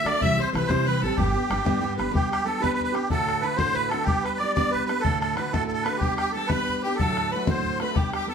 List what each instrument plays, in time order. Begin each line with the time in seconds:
0.04 upright bass D2, steel-string acoustic guitar D3 A3 D4 F#4, accordion D5, fiddle D5, bodhran
0.20 upright bass C2, steel-string acoustic guitar C3 E3 G3 C4 G4, accordion E5, fiddle E5, bodhran
0.38 steel-string acoustic guitar G3 C4 G4, accordion C5, fiddle C5
0.52 upright bass C2, steel-string acoustic guitar E3 G3 C4, accordion B4 C5, fiddle B4, bodhran
0.57 steel-string acoustic guitar G4
0.67 upright bass C3, steel-string acoustic guitar C3 E3 G3 C4 G4, accordion C5, fiddle C5, bodhran
0.85 steel-string acoustic guitar E3 G3 C4, accordion B4, fiddle B4
0.90 steel-string acoustic guitar G4
1.01 upright bass A1, steel-string acoustic guitar G4, fiddle A4, accordion A4
1.06 steel-string acoustic guitar G3 C4
1.15 upright bass G1, steel-string acoustic guitar G3, accordion G4, fiddle G4, bodhran
1.20 steel-string acoustic guitar B3 D4 G4
1.34 steel-string acoustic guitar B3 D4 G4
1.49 upright bass G1, steel-string acoustic guitar G3 B3 D4 G4, bodhran
1.64 upright bass G2, steel-string acoustic guitar G3 B3 D4 G4, bodhran
1.81 steel-string acoustic guitar G3 B3 D4 G4
1.97 upright bass G1, steel-string acoustic guitar D4 G4, accordion B4, bodhran
2.01 steel-string acoustic guitar B3
2.11 steel-string acoustic guitar G3 B3 D4 G4, accordion G4
2.15 bodhran
2.31 accordion G4, bodhran
2.44 steel-string acoustic guitar G3 B3 D4 G4, accordion A4
2.60 steel-string acoustic guitar G3 B3 D4 G4, accordion B4, bodhran
2.74 accordion B4
2.81 accordion B4, bodhran
2.92 steel-string acoustic guitar B3 D4 G4, accordion G4, bodhran
3.09 steel-string acoustic guitar D2 A2 D3 A3 D4 F#4, accordion A4, bodhran
3.29 bodhran
3.41 steel-string acoustic guitar D3 A3 D4 F#4, accordion B4
3.56 steel-string acoustic guitar D2 A2 D3 A3 D4 F#4, accordion C5, bodhran
3.74 accordion B4, bodhran
3.89 steel-string acoustic guitar F#4, accordion A4, bodhran
3.93 steel-string acoustic guitar D3 A3 D4
4.04 steel-string acoustic guitar G3 B3 D4, accordion G4, bodhran
4.08 steel-string acoustic guitar G4
4.24 accordion B4, bodhran
4.38 steel-string acoustic guitar G3 B3, accordion D5
4.43 steel-string acoustic guitar D4 G4
4.54 steel-string acoustic guitar G3 B3 D4 G4, accordion D5, bodhran
4.71 accordion B4, bodhran
4.86 steel-string acoustic guitar D4 G4, accordion B4, bodhran
4.91 steel-string acoustic guitar B3
5.00 steel-string acoustic guitar D2 A2, accordion A4
5.05 steel-string acoustic guitar D3 A3 D4 F#4, bodhran
5.20 accordion A4, bodhran
5.35 steel-string acoustic guitar D3 A3 D4, accordion B4, bodhran
5.39 steel-string acoustic guitar F#4
5.52 steel-string acoustic guitar D2 A2 D3 A3 D4 F#4, accordion A4, bodhran
5.68 accordion A4, bodhran
5.73 accordion A4
5.83 steel-string acoustic guitar A3 F#4, accordion B4, bodhran
5.88 steel-string acoustic guitar D3 D4
5.98 steel-string acoustic guitar G3 B3, accordion G4, fiddle G4, bodhran
6.03 steel-string acoustic guitar D4 G4
6.16 accordion G4, fiddle G4, bodhran
6.31 steel-string acoustic guitar G3 B3, accordion A4, fiddle A4
6.37 steel-string acoustic guitar D4 G4
6.46 accordion B4, fiddle B4, bodhran
6.51 steel-string acoustic guitar G3 B3 D4 G4
6.68 bodhran
6.82 accordion G4, fiddle G4, steel-string acoustic guitar G4
6.86 steel-string acoustic guitar B3 D4
6.96 accordion A4, fiddle A4
7.00 steel-string acoustic guitar D2 A2 F#3 A3 D4 F#4, bodhran
7.17 bodhran
7.31 steel-string acoustic guitar F#3 A3 D4, accordion B4, fiddle B4
7.36 steel-string acoustic guitar F#4
7.46 steel-string acoustic guitar D2 A2 F#3 A3 D4 F#4, fiddle C5, accordion C5, bodhran
7.65 bodhran
7.80 steel-string acoustic guitar A3 D4 F#4, fiddle B4, accordion B4, bodhran
7.84 steel-string acoustic guitar F#3
7.93 steel-string acoustic guitar G3 B3 D4, accordion G4 A4, fiddle G4, bodhran
7.97 steel-string acoustic guitar G4
8.12 accordion G4, fiddle G4, bodhran
8.26 steel-string acoustic guitar G3 B3 D4 G4, accordion A4, fiddle A4